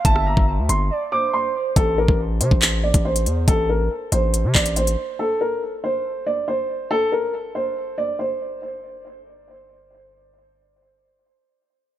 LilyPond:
<<
  \new Staff \with { instrumentName = "Soft synth lead" } { \time 4/4 \key a \phrygian \tempo 4 = 140 e''4 r4 d''8 c''4. | r1 | r1 | r1 |
r1 | r1 | r1 | }
  \new Staff \with { instrumentName = "Upright piano" } { \time 4/4 \key a \phrygian a''8 bes''8 r8 c'''4 d'''8 c'''4 | a'8 bes'8 r8 c''4 d''8 c''4 | a'8 bes'8 r8 c''4 d''8 c''4 | a'8 bes'8 r8 c''4 d''8 c''4 |
a'8 bes'8 r8 c''4 d''8 c''4 | r1 | r1 | }
  \new Staff \with { instrumentName = "808-style bass" } { \clef bass \time 4/4 \key a \phrygian g,,8. g,,8 d,16 g,,8 r2 | a,,8. a,,8. c16 a,,4 a,,8. e,8 | a,,4 r8 a,,8. c16 a,,4 r8 | r1 |
r1 | r1 | r1 | }
  \new DrumStaff \with { instrumentName = "Drums" } \drummode { \time 4/4 <hh bd>16 ss8 bd16 r8 hh8 r4 r4 | <hh bd>8. bd16 r8 hh16 bd16 <hc hh>8. <hh bd>16 r16 hh16 hh8 | <hh bd>4 r8 hh8 hh8 <hc bd>16 hh16 hh16 hh8. | r4 r4 r4 r4 |
r4 r4 r4 r4 | r4 r4 r4 r4 | r4 r4 r4 r4 | }
>>